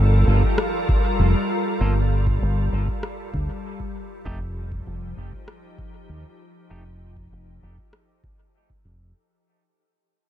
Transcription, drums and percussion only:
0.43 kick
0.58 cross-stick
0.89 kick
2.27 kick
2.88 kick
3.03 cross-stick
3.34 kick
3.80 kick
4.26 kick
4.72 kick
5.33 kick
5.48 cross-stick
5.79 kick
7.17 kick
7.78 kick
7.93 cross-stick
8.24 kick
8.70 kick

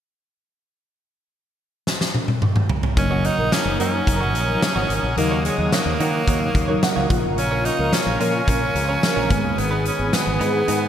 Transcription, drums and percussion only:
1.87 snare
2.01 snare
2.15 high tom
2.28 high tom
2.42 mid tom
2.56 mid tom
2.69 floor tom
2.83 floor tom
2.97 kick, closed hi-hat
3.24 closed hi-hat
3.52 snare, closed hi-hat
3.80 closed hi-hat
4.07 kick, closed hi-hat
4.35 closed hi-hat
4.62 snare, closed hi-hat
4.90 closed hi-hat
5.17 closed hi-hat
5.45 closed hi-hat
5.72 snare, closed hi-hat
6.00 closed hi-hat
6.28 kick, closed hi-hat
6.55 kick, closed hi-hat
6.83 snare, closed hi-hat
7.10 kick, closed hi-hat
7.38 closed hi-hat
7.65 closed hi-hat
7.93 snare, closed hi-hat
8.20 closed hi-hat
8.48 kick, closed hi-hat
8.75 closed hi-hat
9.03 snare, closed hi-hat
9.30 kick, closed hi-hat
9.58 closed hi-hat
9.85 closed hi-hat
10.13 snare, closed hi-hat
10.41 closed hi-hat
10.68 closed hi-hat

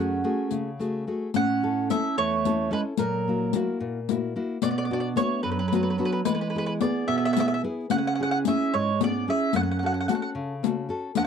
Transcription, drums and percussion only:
0.51 riq
0.80 riq
1.34 riq
1.90 riq
2.45 riq
2.97 riq
3.53 riq
4.09 riq
4.62 riq
5.17 riq
5.73 riq
6.25 riq
6.80 riq
7.36 riq
7.90 riq
8.45 riq
9.01 riq
9.53 riq
10.09 riq
10.64 riq
11.15 riq

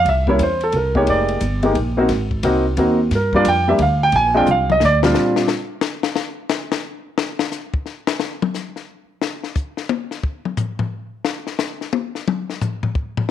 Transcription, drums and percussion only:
0.05 kick, ride
0.27 kick
0.39 kick, hi-hat pedal, ride
0.61 ride
0.72 kick, ride
0.95 kick
1.07 kick, ride
1.28 ride
1.41 kick, hi-hat pedal, ride
1.63 ride
1.75 kick, ride
2.09 kick, snare, ride
2.31 kick
2.43 kick, hi-hat pedal, ride
2.77 kick, ride
3.11 kick, snare, ride
3.33 kick
3.45 kick, hi-hat pedal, ride
3.79 kick, ride
4.12 kick, ride
4.46 hi-hat pedal, mid tom
4.70 mid tom
4.80 snare
5.03 snare
5.14 snare
5.36 snare
5.48 snare, hi-hat pedal
5.81 snare
6.03 snare
6.16 snare
6.49 snare, hi-hat pedal
6.72 snare
7.18 snare
7.39 snare
7.51 snare, hi-hat pedal
7.74 kick
7.86 snare
8.07 snare
8.20 snare
8.42 mid tom
8.54 snare, hi-hat pedal
8.76 snare
9.22 snare
9.43 snare
9.55 kick, hi-hat pedal
9.77 snare
9.89 high tom
10.11 snare
10.23 kick
10.45 mid tom
10.57 floor tom, hi-hat pedal
10.79 floor tom
11.25 snare
11.47 snare
11.59 snare, hi-hat pedal
11.81 snare
11.93 high tom
12.15 snare
12.28 mid tom
12.50 snare
12.61 floor tom, hi-hat pedal
12.83 floor tom
12.95 kick
13.17 floor tom

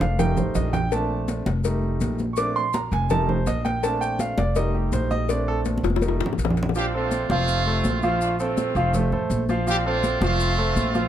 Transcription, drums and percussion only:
0.01 cowbell, low conga, maracas
0.19 cowbell, low conga, maracas
0.37 low conga, maracas
0.55 cowbell, low conga, maracas
0.73 cowbell, low conga, maracas
0.92 cowbell, high conga, maracas
1.10 high conga
1.28 cowbell, high conga, maracas
1.46 cowbell, high conga, maracas
1.64 cowbell, high conga, maracas
1.83 high conga
2.01 cowbell, high conga, maracas
2.19 high conga, maracas
2.36 cowbell, high conga, maracas
2.56 high conga
2.73 cowbell, high conga, maracas
2.92 cowbell, high conga, maracas
3.10 cowbell, high conga, low conga, maracas
3.29 high conga, low conga
3.46 cowbell, high conga, maracas
3.65 cowbell, high conga, maracas
3.83 cowbell, high conga, maracas
4.02 high conga, maracas
4.19 cowbell, high conga, maracas
4.38 cowbell, high conga, maracas
4.55 cowbell, high conga, maracas
4.74 high conga
4.92 cowbell, high conga, maracas
5.11 high conga, maracas
5.29 cowbell, high conga, maracas
5.47 high conga
5.65 cowbell, high conga, maracas
5.78 high conga
5.84 cowbell, high bongo, maracas
5.90 high conga
5.96 high bongo
6.02 cowbell, high conga, maracas
6.08 high bongo
6.21 high bongo
6.26 low conga
6.33 low bongo
6.39 cowbell, maracas
6.45 low bongo
6.50 low conga
6.57 cowbell, maracas
6.63 low conga
6.69 low bongo
6.75 high conga, maracas
6.93 high conga
7.11 high conga, maracas
7.30 high conga, maracas
7.48 high conga, maracas
7.66 high conga
7.84 high conga, maracas
8.03 high conga, maracas
8.21 high conga, maracas
8.40 high conga, maracas
8.57 high conga, maracas
8.76 high conga, maracas
8.94 high conga, low conga, maracas
9.12 high conga, low conga
9.30 high conga, maracas
9.49 high conga, maracas
9.67 high conga, maracas
9.86 high conga
10.04 high conga, maracas
10.22 high conga, maracas
10.40 high conga, maracas
10.59 high conga
10.76 high conga, maracas
10.95 high conga, maracas

